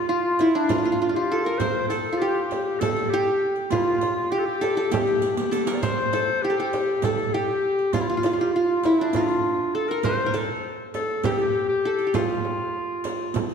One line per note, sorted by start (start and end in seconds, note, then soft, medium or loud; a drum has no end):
0.00 0.14 G4 loud
0.08 0.57 F4 medium
0.08 0.46 F4 medium
0.39 0.76 E4 medium
0.39 riq soft
0.39 frame drum medium
0.55 2.04 D4 medium
0.55 0.71 D4 medium
0.69 1.00 F4 medium
0.69 0.78 F4 medium
0.69 riq medium
0.69 frame drum medium
0.78 0.85 F4 medium
0.84 0.92 F4 medium
0.84 riq soft
0.92 1.01 F4 medium
1.02 1.09 F4 medium
1.09 1.16 F4 medium
1.14 2.12 F4 medium
1.14 1.45 G4 medium
1.32 1.52 A4 medium
1.44 1.60 A#4 medium
1.44 1.96 A#4 medium
1.44 riq soft
1.58 1.88 C5 medium
1.58 2.66 C5 medium
1.58 riq medium
1.58 frame drum medium
1.89 2.20 A4 medium
1.89 2.81 A4 medium
1.89 riq soft
2.13 3.47 F4 medium
2.18 2.64 G4 medium
2.18 3.13 G4 medium
2.51 riq soft
2.51 frame drum medium
2.64 2.81 G4 medium
2.80 3.11 A4 medium
2.80 3.99 A4 medium
2.80 riq medium
2.80 frame drum loud
2.96 riq soft
3.09 3.55 G4 medium
3.14 4.31 G4 loud
3.56 riq soft
3.70 3.78 F4 medium
3.70 5.06 F4 medium
3.70 riq medium
3.70 frame drum medium
3.77 3.86 E4 medium
3.85 4.15 F4 medium
4.01 riq soft
4.01 frame drum medium
4.16 4.33 F4 medium
4.31 4.40 G4 medium
4.31 4.91 G4 medium
4.31 riq soft
4.39 4.47 A4 medium
4.45 4.91 G4 medium
4.61 4.77 A4 medium
4.61 riq soft
4.61 frame drum medium
4.77 5.51 A4 medium
4.91 6.17 G4 medium
4.91 5.34 G4 medium
4.91 riq medium
4.91 frame drum loud
5.07 riq soft
5.22 riq medium
5.37 5.76 G4 medium
5.37 riq medium
5.51 5.73 A4 medium
5.51 riq medium
5.67 6.19 A#4 medium
5.67 riq medium
5.75 5.84 D5 medium
5.82 6.44 C5 medium
5.82 6.88 C5 medium
5.82 riq medium
5.82 frame drum medium
6.13 6.49 A4 medium
6.13 riq medium
6.13 frame drum medium
6.42 6.56 G4 medium
6.42 6.59 G4 medium
6.50 7.04 A4 medium
6.56 7.05 G4 medium
6.56 7.34 G4 medium
6.73 riq soft
6.73 frame drum medium
7.02 7.34 A4 medium
7.02 8.23 A4 medium
7.02 riq medium
7.02 frame drum medium
7.18 riq soft
7.33 7.94 G4 medium
7.33 8.60 G4 medium
7.78 riq soft
7.93 8.02 F4 medium
7.93 8.01 F4 medium
7.93 riq medium
7.93 frame drum medium
8.01 8.09 E4 medium
8.01 8.09 F4 medium
8.08 8.38 F4 medium
8.08 8.17 F4 medium
8.17 8.25 F4 medium
8.23 8.33 F4 medium
8.23 riq medium
8.23 frame drum medium
8.33 8.40 F4 medium
8.39 8.55 F4 medium
8.39 8.52 G4 medium
8.53 8.86 F4 medium
8.53 8.91 F4 medium
8.83 9.01 E4 medium
8.83 9.22 E4 medium
8.83 riq soft
8.83 frame drum medium
8.99 9.14 D4 medium
8.99 10.50 D4 medium
9.13 9.76 F4 medium
9.13 10.51 F4 medium
9.13 riq medium
9.13 frame drum medium
9.28 riq soft
9.75 9.90 A4 medium
9.75 9.97 A4 medium
9.88 10.06 A#4 medium
9.88 10.26 A#4 medium
9.88 riq soft
10.03 10.34 C5 medium
10.03 11.10 C5 medium
10.03 riq medium
10.03 frame drum medium
10.26 10.40 A#4 medium
10.34 11.52 A4 medium
10.34 riq soft
10.34 frame drum medium
10.94 11.26 A4 medium
10.94 riq soft
10.94 frame drum medium
11.23 11.33 G4 medium
11.23 12.06 G4 medium
11.23 riq medium
11.23 frame drum loud
11.31 11.39 A4 medium
11.38 11.68 G4 medium
11.38 riq soft
11.69 12.16 G4 medium
11.85 13.03 A4 medium
11.98 riq soft
12.07 13.32 G4 medium
12.14 13.54 F4 medium
12.14 riq medium
12.14 frame drum loud
12.45 frame drum medium
13.04 riq soft
13.04 frame drum medium
13.34 riq medium
13.34 frame drum loud
13.49 riq soft